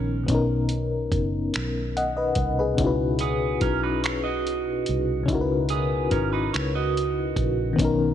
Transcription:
0.00 0.26 A#1 medium
0.00 0.22 D#3 medium
0.00 0.24 B3 medium
0.00 0.25 C#4 medium
0.00 0.27 D#4 medium
0.00 0.25 A#4 medium
0.00 0.28 A#4 medium
0.23 2.72 B2 medium
0.23 2.74 B3 medium
0.28 1.08 B1 medium
0.28 2.75 C#4 medium
0.28 2.76 D#4 medium
0.28 kick medium
0.28 closed hi-hat medium
0.35 1.95 A#4 medium
0.69 closed hi-hat medium
1.12 1.50 F#1 medium
1.12 kick medium
1.12 closed hi-hat soft
1.54 2.34 B1 medium
1.54 finger snap loud
1.54 closed hi-hat medium
1.97 2.15 D#5 soft
1.97 2.16 F#5 medium
1.97 closed hi-hat soft
2.17 2.57 B4 medium
2.17 2.56 D#5 medium
2.35 2.75 C2 medium
2.35 kick medium
2.35 closed hi-hat medium
2.59 2.99 G#4 soft
2.59 2.85 B4 medium
2.75 3.58 C#2 medium
2.75 5.23 B2 medium
2.75 5.24 C#4 medium
2.75 kick medium
2.75 closed hi-hat medium
2.79 5.25 D#4 medium
2.79 5.26 E4 medium
2.84 5.27 F#4 medium
2.84 5.29 B4 medium
3.19 3.60 B3 medium
3.19 3.60 G#4 medium
3.19 closed hi-hat medium
3.61 4.83 B1 medium
3.61 3.82 C#4 medium
3.61 3.82 A#4 medium
3.61 kick medium
3.61 closed hi-hat soft
3.83 4.03 D#4 medium
3.83 4.03 B4 medium
4.04 4.24 E4 medium
4.04 4.23 C#5 medium
4.04 finger snap loud
4.04 closed hi-hat medium
4.24 5.25 F#4 medium
4.24 5.24 D#5 medium
4.47 closed hi-hat soft
4.86 5.26 C2 medium
4.86 closed hi-hat soft
5.23 7.72 C#3 medium
5.23 7.73 C#4 medium
5.28 6.08 C#2 medium
5.28 7.74 D#4 medium
5.28 7.76 E4 medium
5.28 kick medium
5.28 closed hi-hat medium
5.33 7.77 F#4 medium
5.33 5.38 A#4 medium
5.41 7.81 B4 medium
5.69 6.10 B3 medium
5.69 6.10 G#4 medium
5.69 closed hi-hat medium
6.11 6.50 G#1 medium
6.11 6.32 C#4 medium
6.11 6.32 A#4 medium
6.11 kick medium
6.11 closed hi-hat soft
6.33 6.53 D#4 medium
6.33 6.53 B4 medium
6.54 7.34 C#2 medium
6.54 6.74 E4 medium
6.54 6.73 C#5 medium
6.54 finger snap loud
6.54 closed hi-hat medium
6.75 7.75 F#4 medium
6.75 7.75 D#5 medium
6.97 closed hi-hat soft
7.36 7.75 A#1 medium
7.36 kick medium
7.36 closed hi-hat medium
7.73 8.14 D#3 medium
7.73 8.14 B3 medium
7.79 8.14 B1 loud
7.79 8.14 C#4 medium
7.79 8.14 D#4 medium
7.79 kick medium
7.79 closed hi-hat medium
7.85 8.14 A#4 medium

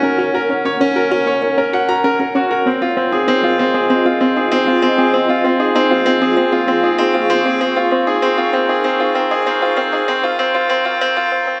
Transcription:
0.00 0.19 C#4 medium
0.00 0.13 C#4 medium
0.00 1.01 D#4 medium
0.00 0.21 F#4 medium
0.00 0.04 A#4 medium
0.00 3.65 A#4 medium
0.00 0.12 A#4 medium
0.00 2.66 C#5 medium
0.00 2.66 F#5 medium
0.18 0.34 C#4 medium
0.18 0.33 F#4 medium
0.34 0.40 F#4 medium
0.34 0.49 A#4 medium
0.49 0.60 C#4 medium
0.49 0.59 C#4 medium
0.65 0.71 C#4 medium
0.65 0.80 C#5 medium
0.80 0.91 C#4 loud
0.80 0.95 C#4 medium
0.96 1.10 F#4 medium
0.96 1.11 A#4 medium
1.11 1.20 C#4 medium
1.11 1.18 F#4 medium
1.26 1.37 C#4 medium
1.26 1.36 C#5 medium
1.42 1.48 C#4 medium
1.42 1.57 C#4 medium
1.57 1.68 C#4 loud
1.57 1.73 A#4 medium
1.73 1.87 F#4 medium
1.73 1.82 F#5 medium
1.88 1.95 F#4 medium
1.88 2.03 A#5 medium
2.04 2.15 C#4 medium
2.04 2.13 A#4 medium
2.19 2.26 C#4 medium
2.19 2.29 A#4 medium
2.35 2.46 C#4 loud
2.35 2.50 F#4 medium
2.50 2.65 F#4 medium
2.50 2.65 A#4 medium
2.65 2.76 C4 medium
2.65 2.81 C4 medium
2.65 7.60 F4 medium
2.81 2.88 C4 medium
2.81 2.96 F4 medium
2.95 3.07 C4 medium
2.95 3.06 C4 medium
2.95 6.12 D#5 medium
3.12 3.26 D#4 medium
3.12 3.27 G#4 medium
3.25 3.43 C4 medium
3.25 3.34 D#4 medium
3.25 5.13 C5 medium
3.38 6.12 G#5 medium
3.43 3.54 C4 medium
3.43 3.58 F4 medium
3.58 3.65 C4 medium
3.58 3.68 C4 medium
3.74 3.85 C4 medium
3.74 3.83 G#4 medium
3.90 4.00 C4 medium
3.90 4.05 C4 medium
4.05 4.12 C4 medium
4.05 4.20 F4 medium
4.21 4.30 C4 medium
4.21 4.31 C4 medium
4.36 4.50 D#4 medium
4.36 4.51 G#4 medium
4.52 4.66 C4 medium
4.52 4.58 D#4 medium
4.67 4.78 C4 medium
4.67 4.82 F4 medium
4.82 4.89 C4 medium
4.82 4.91 C4 medium
4.98 5.09 C4 medium
4.98 5.07 G#4 medium
5.13 8.54 A#3 medium
5.13 5.24 C4 medium
5.13 5.28 C4 medium
5.29 5.35 C4 medium
5.29 5.44 F4 medium
5.38 8.60 G#4 medium
5.44 5.55 C4 medium
5.44 5.53 C4 medium
5.59 5.74 D#4 medium
5.59 5.75 G#4 medium
5.75 5.90 C4 medium
5.75 5.82 D#4 medium
5.90 6.01 C4 medium
5.90 6.06 F4 medium
6.06 6.15 C4 medium
6.06 6.13 C4 medium
6.21 6.32 C4 medium
6.21 6.31 G#4 medium
6.21 11.32 C#6 medium
6.37 6.48 C4 medium
6.37 6.52 C4 medium
6.52 6.59 C4 medium
6.52 6.67 F4 medium
6.68 6.77 C4 medium
6.68 6.79 C4 loud
6.83 6.97 D#4 medium
6.83 6.98 G#4 medium
6.98 7.14 C4 medium
6.98 7.05 D#4 medium
7.14 7.25 C4 medium
7.14 7.29 F4 medium
7.30 7.39 C4 medium
7.30 7.36 C4 medium
7.45 7.56 C4 loud
7.45 7.54 G#4 medium
7.61 7.71 C4 medium
7.61 7.76 C4 medium
7.61 11.06 D#4 medium
7.71 11.32 A#4 medium
7.76 7.83 C4 medium
7.76 7.91 F4 medium
7.91 8.00 C4 medium
7.91 8.02 C4 loud
8.07 8.20 D#4 medium
8.07 8.20 G#4 medium
8.22 8.37 C4 medium
8.22 8.33 C4 medium
8.38 8.45 C4 medium
8.38 8.53 F4 medium
8.53 8.64 C4 loud
8.53 8.63 C4 medium
8.69 8.82 D#4 medium
8.69 8.82 G#4 medium
8.84 8.99 C4 medium
8.84 8.95 C4 medium
9.00 9.06 C4 medium
9.00 9.15 F4 medium
9.15 9.26 C4 loud
9.15 9.24 C4 medium
9.31 9.44 D#4 medium
9.31 9.44 G#4 medium
9.46 9.57 C4 medium
9.46 9.61 C4 medium
9.62 9.68 C4 medium
9.62 9.77 F4 medium
9.77 9.86 C4 medium
9.77 9.88 C4 loud
9.92 10.06 D#4 medium
9.92 10.06 G#4 medium
10.08 10.23 C4 medium
10.08 10.19 C4 medium
10.23 10.30 C4 medium
10.23 10.37 F4 medium
10.39 10.50 C4 medium
10.39 10.54 C4 medium
10.55 10.61 C4 medium
10.55 10.68 F4 medium
10.70 10.85 C4 medium
10.70 10.81 C4 medium
10.85 10.92 C4 medium
10.85 10.98 F4 medium
11.01 11.12 C4 medium
11.01 11.16 C4 medium
11.17 11.23 C4 medium
11.17 11.30 F4 medium
11.32 11.43 C4 medium
11.47 11.54 C4 medium

